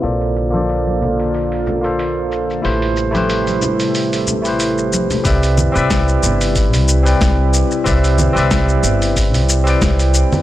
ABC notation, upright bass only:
X:1
M:4/4
L:1/16
Q:"Swing 16ths" 1/4=92
K:C
V:1 name="Upright bass" clef=bass
_B,,,16 | A,,,16 | C,,2 z C,,2 z G,,,3 C,,2 z C,,2 z2 | C,,2 z C,,2 z G,,,3 C,,2 z C,,2 z2 |]